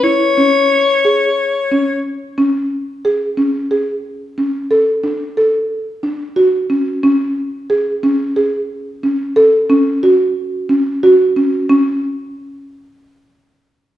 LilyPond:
<<
  \new Staff \with { instrumentName = "Soprano saxophone" } { \time 7/8 \key cis \phrygian \tempo 4 = 90 cis''2. r8 | r2. r8 | r2. r8 | r2. r8 |
r2. r8 | r2. r8 | }
  \new Staff \with { instrumentName = "Marimba" } { \time 7/8 \key cis \phrygian e'8 cis'4 gis'4 cis'4 | cis'4 gis'8 cis'8 gis'4 cis'8 | a'8 d'8 a'4 d'8 fis'8 cis'8 | cis'4 gis'8 cis'8 gis'4 cis'8 |
a'8 cis'8 fis'4 cis'8 fis'8 cis'8 | cis'8 r2. | }
>>